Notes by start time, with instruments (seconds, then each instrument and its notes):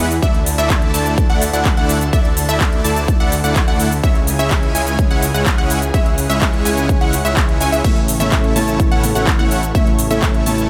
Already playing: detuned saw bass E2, analog synth pad E3 E4 G#4 B4 B5
0.11 open hi-hat, shaker
0.22 detuned saw bass D2, analog synth pad D3 D4 A4 A5, supersaw synth A3 D4 E4 D5 E5, synth pluck E5, kick, shaker
0.34 closed hi-hat
0.46 open hi-hat, shaker
0.58 detuned saw bass D2, supersaw synth A3 D4 E4 D5 E5, synth pluck E5, closed hi-hat, shaker
0.70 kick, clap, closed hi-hat, shaker
0.82 closed hi-hat
0.94 detuned saw bass D2, supersaw synth A3 D4 E4 D5 A5, synth pluck A5, open hi-hat, shaker
1.06 closed hi-hat, shaker
1.18 kick, closed hi-hat, shaker
1.30 detuned saw bass D2, supersaw synth A3 D4 E4 D5 F#5, synth pluck F#5, closed hi-hat
1.42 open hi-hat, shaker
1.53 detuned saw bass D2, supersaw synth A3 D4 E4 D5 F#5, synth pluck F#5, closed hi-hat, shaker
1.65 kick, clap, closed hi-hat, shaker
1.77 detuned saw bass D2, supersaw synth A3 D4 E4 D5 F#5, synth pluck F#5, closed hi-hat
1.89 open hi-hat, shaker
2.01 closed hi-hat, shaker
2.13 detuned saw bass D2, supersaw synth A3 D4 E4 D5 E5, synth pluck E5, kick, closed hi-hat, shaker
2.25 closed hi-hat
2.37 open hi-hat, shaker
2.49 detuned saw bass D2, supersaw synth A3 D4 E4 D5 E5, synth pluck E5, closed hi-hat, shaker
2.60 kick, clap, closed hi-hat, shaker
2.73 closed hi-hat
2.84 detuned saw bass D2, supersaw synth A3 D4 E4 D5 A5, synth pluck A5, open hi-hat, shaker
2.96 closed hi-hat, shaker
3.08 kick, closed hi-hat, shaker
3.20 detuned saw bass D2, supersaw synth A3 D4 E4 D5 F#5, synth pluck F#5, closed hi-hat
3.32 open hi-hat, shaker
3.44 detuned saw bass D2, supersaw synth A3 D4 E4 D5 F#5, synth pluck F#5, closed hi-hat, shaker
3.56 kick, clap, closed hi-hat, shaker
3.68 detuned saw bass D2, supersaw synth A3 D4 E4 D5 F#5, synth pluck F#5, closed hi-hat
3.80 open hi-hat, shaker
3.92 open hi-hat, shaker
4.03 detuned saw bass C#2, analog synth pad C#3 C#4 E4 G#4 G#5, supersaw synth G#3 C#4 E4 C#5 E5, synth pluck E5, kick, closed hi-hat, shaker
4.15 closed hi-hat
4.27 open hi-hat, shaker
4.39 detuned saw bass C#2, supersaw synth G#3 C#4 E4 C#5 E5, synth pluck E5, closed hi-hat, shaker
4.51 kick, clap, closed hi-hat, shaker
4.63 closed hi-hat
4.75 detuned saw bass C#2, supersaw synth G#3 C#4 E4 C#5 G#5, synth pluck G#5, open hi-hat, shaker
4.87 closed hi-hat, shaker
4.99 kick, closed hi-hat, shaker
5.11 detuned saw bass C#2, supersaw synth G#3 C#4 E4 C#5 F#5, synth pluck F#5, closed hi-hat
5.22 open hi-hat, shaker
5.34 detuned saw bass C#2, supersaw synth G#3 C#4 E4 C#5 F#5, synth pluck F#5, closed hi-hat, shaker
5.46 kick, clap, closed hi-hat, shaker
5.58 detuned saw bass C#2, supersaw synth G#3 C#4 E4 C#5 F#5, synth pluck F#5, closed hi-hat
5.70 open hi-hat, shaker
5.82 closed hi-hat, shaker
5.94 detuned saw bass C#2, supersaw synth G#3 C#4 E4 C#5 E5, synth pluck E5, analog synth pad F#5, kick, closed hi-hat, shaker
6.06 closed hi-hat
6.18 open hi-hat, shaker
6.30 detuned saw bass C#2, supersaw synth G#3 C#4 E4 C#5 E5, synth pluck E5, closed hi-hat, shaker
6.41 kick, clap, closed hi-hat, shaker
6.53 closed hi-hat
6.65 detuned saw bass C#2, supersaw synth G#3 C#4 E4 C#5 G#5, synth pluck G#5, open hi-hat, shaker
6.77 closed hi-hat, shaker
6.89 kick, closed hi-hat, shaker
7.01 detuned saw bass C#2, supersaw synth G#3 C#4 E4 C#5 F#5, synth pluck F#5, closed hi-hat
7.13 open hi-hat, shaker
7.25 detuned saw bass C#2, supersaw synth G#3 C#4 E4 C#5 E5, synth pluck E5, closed hi-hat, shaker
7.37 kick, clap, closed hi-hat, shaker
7.49 closed hi-hat
7.61 detuned saw bass C#2, supersaw synth G#3 C#4 E4 C#5 G#5, synth pluck G#5, open hi-hat, shaker
7.72 detuned saw bass C#2, supersaw synth G#3 C#4 E4 C#5 E5, synth pluck E5, open hi-hat, shaker
7.84 detuned saw bass A1, felt piano C#3 E3 A3 E4, supersaw synth A3 C#4 E4 C#5 E5, analog synth pad A4 C#5, synth pluck E5, kick, closed hi-hat, crash, shaker
7.96 closed hi-hat
8.08 open hi-hat, shaker
8.20 detuned saw bass A1, felt piano C#3 E3 A3 A4, supersaw synth A3 C#4 E4 C#5 E5, synth pluck E5, closed hi-hat, shaker
8.32 kick, clap, closed hi-hat, shaker
8.44 closed hi-hat
8.55 detuned saw bass A1, felt piano C#3 E3 A3 E4, supersaw synth A3 C#4 E4 C#5 A5, synth pluck A5, open hi-hat, shaker
8.68 closed hi-hat, shaker
8.80 kick, closed hi-hat, shaker
8.91 detuned saw bass A1, felt piano C#3 E3 A3 E4, supersaw synth A3 C#4 E4 C#5 F#5, synth pluck F#5, closed hi-hat
9.03 felt piano C#3 E3 A3 A4, open hi-hat, shaker
9.15 detuned saw bass A1, felt piano C#3 E3 A3, supersaw synth A3 C#4 E4 C#5 F#5, synth pluck F#5, closed hi-hat, shaker
9.27 kick, clap, closed hi-hat, shaker
9.38 detuned saw bass A1, felt piano C#3 E3 A3 E4, supersaw synth A3 C#4 E4 C#5 F#5, synth pluck F#5, closed hi-hat
9.51 open hi-hat, shaker
9.63 closed hi-hat, shaker
9.74 detuned saw bass A1, felt piano C#3 E3 A3 E4, supersaw synth A3 C#4 E4 C#5 E5, synth pluck E5, kick, closed hi-hat, shaker
9.87 closed hi-hat
9.99 open hi-hat, shaker
10.10 detuned saw bass A1, felt piano C#3 E3 A3 A4, supersaw synth A3 C#4 E4 C#5 E5, synth pluck E5, closed hi-hat, shaker
10.22 kick, clap, closed hi-hat, shaker
10.34 closed hi-hat
10.46 detuned saw bass A1, felt piano C#3 E3 A3 E4, supersaw synth A3 C#4 E4 C#5 A5, synth pluck A5, open hi-hat, shaker
10.58 closed hi-hat, shaker